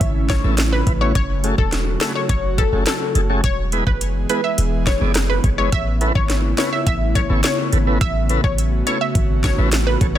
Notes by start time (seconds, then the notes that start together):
Already playing: C#3 A3 C#4 E4
0.01 G#1, kick, closed hi-hat
0.29 E4 A4 C#5, kick, snare, closed hi-hat
0.44 A1 A3 B3 C#4 E4 A4
0.58 snare, closed hi-hat
0.73 B4
0.86 A1 E4 B4, kick, closed hi-hat
1.01 A3 B3 C#4 E4 F#4 C#5
1.15 F#1 F#3 F#4 C#5, kick, closed hi-hat
1.44 A3 C#4 F#4 G#4 A4, closed hi-hat
1.58 E1 A4, kick
1.72 snare, closed hi-hat
2.01 A3 C#4 F#4 G#4 A4 B4, snare, closed hi-hat
2.15 C#5
2.29 F#1 C#5, kick, closed hi-hat
2.58 G#4 A4 B4, kick, closed hi-hat
2.72 F#1 A3 C#4 F#4 G#4 A4
2.86 A4, snare, closed hi-hat
3.15 F#1 G#4 A4, closed hi-hat
3.29 A3 C#4 F#4 G#4 A4
3.44 E1 E3 G#3 B3 G#4 C#5, kick, closed hi-hat
3.72 G#3 B3 E4 G#4 B4, closed hi-hat
3.87 F#1 B4, kick
4.01 closed hi-hat
4.29 G#3 B3 E4 G#4 B4, closed hi-hat
4.44 E5
4.58 E1, closed hi-hat
4.87 G#4 B4 C#5, kick, snare, closed hi-hat
5.01 F#1 G#3 B3 E4 G#4 D5
5.15 cross-stick, snare, closed hi-hat
5.30 B4
5.44 F#1 G#4 C#5, kick, closed hi-hat
5.58 G#3 B3 E4 G#4 B4 C#5
5.72 A1 C#3 A3 E4 E5, kick, closed hi-hat
6.01 B3 C#4 E4 A4 B4, closed hi-hat
6.15 G#1 C#5, kick
6.30 snare, closed hi-hat
6.58 B3 C#4 E4 A4 B4 C#5, snare, closed hi-hat
6.73 E5
6.87 A1 E5, kick, closed hi-hat
7.15 A4 B4 C#5, kick, closed hi-hat
7.29 G#1 B3 C#4 E4 A4 C#5
7.44 C#5, snare, closed hi-hat
7.72 G#1 A4 B4, closed hi-hat
7.87 B3 C#4 E4 A4 B4
8.01 A1 F#4 E5, kick, closed hi-hat
8.29 B3 C#4 E4 A4 B4, closed hi-hat
8.44 A1 C#5, kick
8.58 closed hi-hat
8.87 B3 C#4 E4 A4 C#5, closed hi-hat
9.01 E5
9.15 G#1, kick, closed hi-hat
9.44 A4 B4 C#5, kick, snare, closed hi-hat
9.58 A1 B3 C#4 E4 A4 B4
9.72 snare, closed hi-hat
9.87 B4
10.01 A1 A4 C#5, kick, closed hi-hat